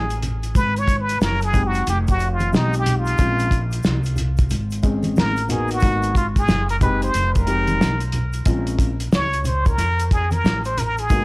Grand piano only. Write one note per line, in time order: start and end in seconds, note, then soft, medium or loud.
1.53 1.79 G#3 medium
1.53 1.79 C4 medium
1.53 1.80 D#4 medium
1.53 1.80 G4 medium
2.52 3.17 G#3 medium
2.52 3.18 C4 medium
2.52 3.19 D#4 medium
2.52 3.19 G4 medium
3.19 3.44 G#3 medium
3.19 3.45 C4 medium
3.19 3.45 C#4 medium
3.19 3.45 F4 medium
4.83 5.33 G#3 medium
4.83 5.33 C4 medium
4.83 5.33 C#4 medium
4.83 5.33 G#4 medium
5.48 5.81 A#3 medium
5.48 5.81 B3 medium
5.48 5.81 D#4 medium
5.48 5.82 F#4 medium
5.82 6.08 A#3 medium
5.82 6.08 B3 medium
5.82 6.08 D#4 medium
5.82 6.09 F#4 medium
6.81 7.07 G#3 medium
6.81 7.07 C4 medium
6.81 7.07 D#4 medium
6.81 7.07 G4 medium
7.46 7.88 G#3 medium
7.46 7.88 C4 medium
7.46 7.88 D#4 medium
7.46 7.89 G4 medium
8.46 8.87 G#3 medium
8.46 8.87 C4 medium
8.46 8.88 C#4 medium
8.46 8.88 F4 medium
11.10 11.25 A#3 medium
11.10 11.25 B3 medium
11.10 11.25 D#4 medium
11.10 11.25 F#4 medium